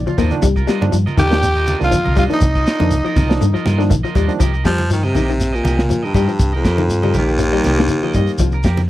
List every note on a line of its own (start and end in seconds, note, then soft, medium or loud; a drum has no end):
0.00 0.16 D5 medium
0.07 0.15 F3 medium
0.07 0.17 F4 medium
0.07 muted clean electric guitar stroke medium
0.07 high conga medium
0.07 shekere soft
0.18 0.30 D#2 medium
0.18 0.36 A#3 medium
0.18 0.34 D4 medium
0.18 0.34 F4 medium
0.18 0.34 A#4 medium
0.18 0.41 C5 medium
0.18 0.34 D#5 medium
0.18 kick medium
0.18 open hi-hat medium
0.18 low conga medium
0.18 shekere medium
0.31 0.46 D#3 loud
0.31 0.46 F3 medium
0.31 0.46 A#3 medium
0.31 0.46 D4 loud
0.31 closed hi-hat medium
0.31 high conga medium
0.31 shekere soft
0.42 0.65 C2 loud
0.42 0.60 G3 loud
0.42 kick medium
0.42 closed hi-hat medium
0.42 shekere medium
0.56 0.67 F4 soft
0.56 0.67 A#4 medium
0.56 muted clean electric guitar stroke medium
0.56 kick medium
0.56 shekere soft
0.67 0.85 G3 medium
0.67 0.83 D4 medium
0.67 0.84 F4 medium
0.67 0.84 A#4 medium
0.67 0.84 D#5 medium
0.67 snare medium
0.67 closed hi-hat medium
0.67 shekere medium
0.81 0.91 G2 loud
0.81 0.96 D#3 medium
0.81 0.96 F3 medium
0.81 0.96 A#3 medium
0.81 0.96 D4 loud
0.81 high conga medium
0.81 shekere soft
0.92 1.05 G2 medium
0.92 1.10 F3 medium
0.92 closed hi-hat medium
0.92 shekere medium
1.06 1.16 F4 soft
1.06 1.16 A#4 soft
1.06 1.17 D#5 medium
1.06 high conga medium
1.06 shekere soft
1.17 1.73 D#2 loud
1.17 1.27 D#3 medium
1.17 1.33 D4 medium
1.17 1.33 F4 medium
1.17 1.77 G4 loud
1.17 1.33 A#4 medium
1.17 1.33 D#5 medium
1.17 1.77 G5 loud
1.17 kick medium
1.17 closed hi-hat medium
1.17 high conga medium
1.17 low conga medium
1.17 shekere medium
1.30 1.45 D#3 medium
1.30 1.49 D#3 medium
1.30 1.45 F3 medium
1.30 1.45 A#3 medium
1.30 1.45 D4 medium
1.30 snare medium
1.30 closed hi-hat medium
1.30 shekere soft
1.43 closed hi-hat medium
1.43 low conga medium
1.43 shekere medium
1.56 1.66 F4 soft
1.56 1.67 A#4 soft
1.56 1.67 D#5 medium
1.56 shekere soft
1.67 1.83 D4 medium
1.67 1.83 F4 medium
1.67 1.83 A#4 medium
1.67 1.83 D#5 medium
1.67 closed hi-hat medium
1.67 high conga medium
1.67 shekere medium
1.80 1.91 C2 medium
1.80 1.95 D#3 medium
1.80 1.95 F3 medium
1.80 1.95 A#3 medium
1.80 1.95 D4 medium
1.80 2.16 F5 medium
1.80 shekere soft
1.84 2.16 F4 medium
1.91 2.09 F3 medium
1.91 kick medium
1.91 closed hi-hat medium
1.91 high conga medium
1.91 shekere medium
2.05 2.28 C2 loud
2.05 2.15 F4 soft
2.05 2.16 A#4 medium
2.05 2.16 D#5 medium
2.05 high conga medium
2.05 shekere soft
2.16 2.26 G3 medium
2.16 2.32 D4 medium
2.16 2.32 F4 medium
2.16 2.25 F4 medium
2.16 2.33 D#5 medium
2.16 2.24 F5 medium
2.16 muted clean electric guitar stroke medium
2.16 kick medium
2.16 open hi-hat medium
2.16 low conga medium
2.16 shekere medium
2.30 2.48 D#3 medium
2.30 2.45 D#3 medium
2.30 2.45 F3 medium
2.30 2.45 A#3 medium
2.30 2.45 D4 medium
2.30 3.88 D#5 medium
2.30 closed hi-hat medium
2.30 shekere soft
2.34 3.89 D#4 medium
2.41 2.64 C2 loud
2.41 kick loud
2.41 closed hi-hat medium
2.41 shekere loud
2.55 2.66 F4 soft
2.55 2.66 A#4 soft
2.55 2.66 D#5 medium
2.55 kick medium
2.55 shekere soft
2.66 2.82 D4 medium
2.66 2.82 F4 medium
2.66 2.83 A#4 medium
2.66 2.83 D#5 medium
2.66 snare medium
2.66 closed hi-hat medium
2.66 shekere medium
2.80 2.90 F2 medium
2.80 2.98 D3 medium
2.80 2.95 D#3 medium
2.80 2.95 F3 medium
2.80 2.95 A#3 medium
2.80 2.95 D4 medium
2.80 closed hi-hat medium
2.80 high conga medium
2.80 shekere soft
2.91 3.03 C2 medium
2.91 closed hi-hat medium
2.91 shekere medium
3.05 3.22 F3 medium
3.05 3.15 F4 soft
3.05 3.16 A#4 medium
3.05 3.16 D#5 medium
3.05 muted fingered electric bass stroke soft
3.05 shekere soft
3.16 3.38 C2 medium
3.16 3.32 F4 medium
3.16 3.32 A#4 medium
3.16 3.33 D#5 medium
3.16 muted clean electric guitar stroke medium
3.16 kick medium
3.16 open hi-hat medium
3.16 high conga medium
3.16 low conga medium
3.16 shekere medium
3.29 3.44 D#3 medium
3.29 3.44 F3 medium
3.29 3.44 A#3 medium
3.29 3.44 D4 medium
3.29 snare medium
3.29 shekere soft
3.41 3.53 G2 loud
3.41 3.51 D3 medium
3.41 closed hi-hat medium
3.41 low conga medium
3.41 shekere medium
3.54 3.72 F3 medium
3.54 3.64 F4 medium
3.54 3.65 A#4 medium
3.54 3.65 D#5 medium
3.54 muted fingered electric bass stroke soft
3.54 shekere soft
3.65 3.92 G2 loud
3.65 3.82 F4 medium
3.65 3.82 A#4 medium
3.65 3.82 D#5 medium
3.65 muted clean electric guitar stroke medium
3.65 snare soft
3.65 closed hi-hat medium
3.65 high conga loud
3.65 shekere medium
3.78 3.87 D3 medium
3.78 3.94 D#3 medium
3.78 3.94 F3 medium
3.78 3.94 A#3 medium
3.78 3.94 D4 medium
3.78 snare soft
3.78 shekere soft
3.90 4.03 A#1 medium
3.90 4.00 D#3 medium
3.90 kick medium
3.90 closed hi-hat medium
3.90 high conga medium
3.90 shekere medium
4.03 4.13 F3 medium
4.03 4.14 F4 medium
4.03 4.15 A#4 medium
4.03 4.15 D#5 medium
4.03 shekere soft
4.15 4.28 D#2 medium
4.15 4.33 G3 medium
4.15 4.31 D4 medium
4.15 4.32 F4 medium
4.15 4.32 A#4 medium
4.15 4.32 D#5 medium
4.15 kick medium
4.15 closed hi-hat medium
4.15 low conga medium
4.15 shekere medium
4.28 4.40 D#3 medium
4.28 4.40 F3 medium
4.28 4.40 A#3 medium
4.28 4.40 D4 loud
4.28 closed hi-hat medium
4.28 shekere soft
4.40 4.63 C2 medium
4.40 4.58 F3 medium
4.40 4.54 G4 medium
4.40 4.53 A#4 medium
4.40 4.52 D#5 medium
4.40 kick medium
4.40 closed hi-hat medium
4.40 shekere medium
4.53 4.63 A#4 soft
4.53 4.64 D#5 soft
4.53 shekere soft
4.64 4.90 F2 medium
4.64 4.90 F3 loud
4.64 4.83 G3 medium
4.64 4.81 G4 medium
4.64 4.81 A#4 medium
4.64 4.81 D#5 medium
4.64 kick medium
4.64 snare medium
4.64 closed hi-hat medium
4.64 shekere medium
4.78 snare soft
4.78 closed hi-hat medium
4.78 high conga medium
4.78 shekere soft
4.90 5.12 G2 medium
4.90 5.06 D#3 medium
4.90 5.08 F3 medium
4.90 snare soft
4.90 closed hi-hat medium
4.90 shekere medium
5.03 5.57 C3 medium
5.03 5.13 A#4 soft
5.03 5.14 D#5 medium
5.03 high conga medium
5.03 shekere soft
5.14 5.59 A#1 medium
5.14 5.25 D#3 medium
5.14 5.30 G4 medium
5.14 5.31 A#4 medium
5.14 5.31 D#5 medium
5.14 closed hi-hat soft
5.14 high conga medium
5.14 low conga medium
5.14 shekere medium
5.28 5.47 D#3 medium
5.28 closed hi-hat medium
5.28 shekere soft
5.40 snare soft
5.40 closed hi-hat medium
5.40 shekere medium
5.53 6.06 A#2 medium
5.53 5.63 A#4 soft
5.53 5.64 D#5 medium
5.53 shekere soft
5.64 5.87 C2 medium
5.64 5.80 G4 medium
5.64 5.81 A#4 medium
5.64 5.81 D#5 medium
5.64 closed hi-hat soft
5.64 high conga loud
5.64 shekere medium
5.78 snare medium
5.78 high conga medium
5.78 shekere soft
5.89 6.08 F3 medium
5.89 closed hi-hat medium
5.89 high conga medium
5.89 shekere medium
6.02 6.53 G2 medium
6.02 6.13 A#4 soft
6.02 6.14 D#5 soft
6.02 shekere soft
6.14 6.27 G2 medium
6.14 6.25 G3 medium
6.14 6.30 G4 medium
6.14 6.31 A#4 medium
6.14 6.31 D#5 medium
6.14 kick medium
6.14 closed hi-hat medium
6.14 low conga medium
6.14 shekere medium
6.28 6.46 F3 medium
6.28 shekere soft
6.39 6.62 C2 medium
6.39 kick medium
6.39 closed hi-hat medium
6.39 shekere medium
6.53 7.14 F2 medium
6.53 6.63 A#4 soft
6.53 6.64 D#5 soft
6.53 shekere soft
6.64 6.90 F2 medium
6.64 6.80 G4 medium
6.64 6.81 A#4 medium
6.64 6.81 D#5 medium
6.64 kick medium
6.64 snare medium
6.64 closed hi-hat medium
6.64 shekere medium
6.78 6.96 D#3 medium
6.78 high conga medium
6.78 shekere soft
6.89 7.12 G2 medium
6.89 closed hi-hat medium
6.89 shekere medium
7.03 7.21 G3 medium
7.03 7.14 A#4 soft
7.03 7.14 D#5 medium
7.03 high conga medium
7.03 shekere soft
7.14 7.59 A#1 medium
7.14 7.30 G4 medium
7.14 7.31 A#4 medium
7.14 muted clean electric guitar stroke medium
7.14 closed hi-hat medium
7.14 high conga medium
7.14 low conga medium
7.14 shekere medium
7.18 8.62 D#2 loud
7.28 shekere soft
7.38 7.49 D#3 medium
7.38 closed hi-hat medium
7.38 shekere medium
7.53 7.71 G3 medium
7.53 7.63 A#4 soft
7.53 7.64 D#5 soft
7.53 shekere soft
7.64 7.87 C2 medium
7.64 7.80 G4 medium
7.64 7.80 A#4 medium
7.64 7.81 D#5 medium
7.64 snare soft
7.64 closed hi-hat medium
7.64 high conga medium
7.64 shekere medium
7.78 7.86 D3 medium
7.78 snare medium
7.78 shekere soft
7.88 7.99 D#3 medium
7.88 closed hi-hat medium
7.88 high conga medium
7.88 shekere medium
8.02 8.11 F3 medium
8.02 8.14 A#4 medium
8.02 8.14 D#5 medium
8.02 high conga medium
8.02 shekere soft
8.14 8.26 G2 medium
8.14 8.33 G3 medium
8.14 8.31 D#5 medium
8.14 muted clean electric guitar stroke medium
8.14 kick medium
8.14 closed hi-hat medium
8.14 low conga medium
8.14 shekere medium
8.27 closed hi-hat medium
8.27 shekere soft
8.38 8.62 C2 medium
8.38 8.58 F3 medium
8.38 kick medium
8.38 closed hi-hat medium
8.38 shekere medium
8.52 8.64 A#4 soft
8.52 muted clean electric guitar stroke medium
8.52 shekere soft
8.63 8.90 F2 medium
8.63 8.80 G4 medium
8.63 8.80 A#4 medium
8.63 muted clean electric guitar stroke medium
8.63 kick medium
8.63 snare medium
8.63 closed hi-hat medium
8.63 shekere medium
8.77 snare soft
8.77 closed hi-hat medium
8.77 high conga medium
8.77 shekere soft